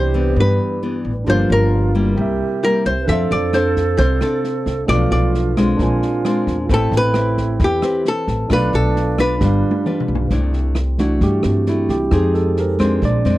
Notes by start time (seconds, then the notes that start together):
Already playing: C2 C3 E3 B3 D4 E4 G4 C5 D5 B5
0.14 E3 B3 D4
0.36 G2
0.40 B4
0.83 E3 B3 D4
1.05 A1
1.24 G1 G2 F3 A#3 D4 F4 G4 A#4
1.30 C5 F5
1.50 G1 A#4
1.95 G3 A#3 E4
2.16 C2 C3 C4 G4 A#4
2.21 E5
2.63 G3 A#3 E4 A#4
2.85 C2 C5
3.01 B4
3.06 F2 F3 C4 D4 A4 C5 E5, kick, snare
3.10 A4 F5
3.31 F2 D5, snare
3.53 C4 D4 A4 C5, cross-stick, snare
3.76 kick, snare
3.98 C2 C3 C5, kick, snare
4.21 C4 D4 A4, cross-stick, snare
4.44 snare
4.66 C2, kick, snare
4.87 B1 B2 F3 A3 D4 F4 A4 B4 D5, kick, cross-stick, snare
4.92 F5
5.11 B1 D5, snare
5.34 snare
5.57 G#3 C4 D4, kick, cross-stick, snare
5.77 A#1 A#2 D4 F4 A#4 C5, kick, snare
5.83 G#5
6.02 snare
6.25 G#3 C4 D4, cross-stick, snare
6.47 E2, kick, snare
6.64 C4 F4
6.69 A1 A3 C4 E4 G4 A4 B4 G5, kick, snare
6.74 A4
6.91 A1, snare
6.97 B4
7.14 C4 G4 B4, cross-stick, snare
7.37 kick, snare
7.59 E2 E3, kick, snare
7.64 G4
7.82 C4 G4 B4, cross-stick, snare
8.05 A4, snare
8.28 A1, kick, snare
8.48 B1 B2 A3 D4 F4 A4 B4, kick, cross-stick, snare
8.53 B4 F5
8.73 B1 A4, snare
8.96 snare
9.18 D4 F4 B4, kick, cross-stick, snare
9.39 G1 G3 D4 G4, kick, snare
9.43 B4 F5
9.71 high tom
9.86 D4 F4 B4, mid tom
10.00 mid tom
10.08 B1
10.15 floor tom
10.30 C2 C3 A3 D4 E4, kick, snare
10.53 snare
10.75 cross-stick, snare
10.98 E3 A3 D4 E4 F#4, kick, snare
11.21 G2 G3 G4, kick, snare
11.43 G2 C4, cross-stick, snare
11.66 A3 D4 E4, snare
11.89 C2 G4, kick, snare
12.11 F2 F3 G#3 C4 D#4 G4 G#4, kick, cross-stick, snare
12.34 A4, snare
12.57 A#4, snare
12.79 G#3 C4 D4 C5, kick, cross-stick, snare
13.01 A#1 A#2 G#3 C4 D4 D5, kick, snare
13.25 F2 G#3 C4 D4 C5, snare